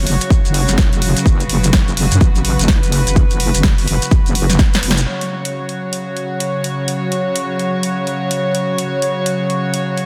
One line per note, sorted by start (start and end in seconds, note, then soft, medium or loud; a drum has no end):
0.00 5.03 C#3 medium
0.00 5.03 F#3 medium
0.00 5.03 F#4 medium
0.00 1.22 C#5 medium
0.07 0.19 F#1 medium
0.07 open hi-hat loud
0.21 closed hi-hat medium
0.21 shekere medium
0.30 kick loud
0.30 shekere medium
0.45 0.67 F#1 loud
0.45 closed hi-hat soft
0.45 shekere soft
0.54 open hi-hat loud
0.68 0.90 F#1 loud
0.68 snare soft
0.68 closed hi-hat medium
0.68 shekere medium
0.78 kick loud
0.78 snare loud
0.78 shekere medium
0.93 1.14 F#1 loud
0.93 closed hi-hat medium
0.93 shekere soft
1.02 open hi-hat medium
1.17 closed hi-hat medium
1.17 shekere medium
1.26 1.48 F#1 medium
1.26 5.03 B4 medium
1.26 kick loud
1.26 shekere medium
1.40 closed hi-hat medium
1.40 shekere soft
1.49 1.72 F#1 loud
1.49 open hi-hat loud
1.64 closed hi-hat medium
1.64 shekere medium
1.73 1.96 F#1 loud
1.73 kick loud
1.73 snare loud
1.73 shekere medium
1.88 closed hi-hat soft
1.88 shekere soft
1.97 2.09 F#1 medium
1.97 open hi-hat loud
2.11 2.19 F#2 loud
2.11 closed hi-hat medium
2.11 shekere medium
2.21 2.57 A1 loud
2.21 kick loud
2.21 shekere medium
2.35 closed hi-hat soft
2.35 shekere soft
2.45 open hi-hat loud
2.59 2.81 F#1 loud
2.59 closed hi-hat medium
2.59 shekere medium
2.68 kick loud
2.68 snare loud
2.68 shekere medium
2.83 3.05 F#1 medium
2.83 closed hi-hat medium
2.83 shekere soft
2.92 open hi-hat medium
3.07 3.28 F#1 medium
3.07 closed hi-hat medium
3.07 shekere medium
3.16 kick loud
3.16 shekere medium
3.31 3.52 F#1 loud
3.31 closed hi-hat medium
3.31 shekere soft
3.40 open hi-hat loud
3.54 3.86 F#1 loud
3.54 closed hi-hat medium
3.54 shekere medium
3.63 kick loud
3.63 snare loud
3.63 shekere medium
3.78 open hi-hat medium
3.78 shekere soft
3.88 4.00 F#1 medium
3.88 open hi-hat loud
4.02 closed hi-hat medium
4.02 shekere medium
4.11 kick loud
4.11 shekere medium
4.26 4.58 F#1 medium
4.26 closed hi-hat soft
4.26 shekere soft
4.35 open hi-hat loud
4.50 snare soft
4.50 closed hi-hat medium
4.50 shekere medium
4.59 kick loud
4.59 snare medium
4.59 shekere medium
4.74 snare medium
4.74 closed hi-hat medium
4.74 shekere soft
4.83 5.05 F#1 medium
4.83 open hi-hat loud
4.91 snare loud
4.97 closed hi-hat medium
4.97 shekere medium
5.07 10.06 C#3 medium
5.07 10.06 F#3 medium
5.07 10.06 F#4 medium
5.07 10.06 C#5 medium
5.21 closed hi-hat soft
5.45 closed hi-hat medium
5.69 closed hi-hat soft
5.93 closed hi-hat medium
6.17 closed hi-hat soft
6.40 closed hi-hat medium
6.64 closed hi-hat medium
6.88 closed hi-hat medium
7.12 closed hi-hat soft
7.36 closed hi-hat medium
7.59 closed hi-hat soft
7.83 closed hi-hat medium
8.07 closed hi-hat soft
8.31 closed hi-hat medium
8.55 closed hi-hat soft
8.78 closed hi-hat medium
9.02 closed hi-hat soft
9.26 closed hi-hat medium
9.50 closed hi-hat soft
9.74 closed hi-hat medium
9.97 closed hi-hat soft